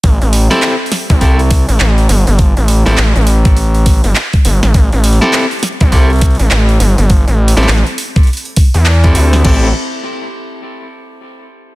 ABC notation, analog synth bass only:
X:1
M:4/4
L:1/16
Q:"Swing 16ths" 1/4=102
K:Am
V:1 name="Analog synth bass" clef=bass
A,,, A,,,2 z4 C,,4 A,,, A,,,2 G,,, G,,,- | G,,, A,,,2 A,,, A,,, A,,,6 G,,, z2 G,,, A,,, | A,,, A,,,2 z4 C,,4 A,,, A,,,2 G,,, G,,,- | G,,, A,,,2 A,,, A,,, z6 E,,3 D,,2 |
A,,,2 z12 z2 |]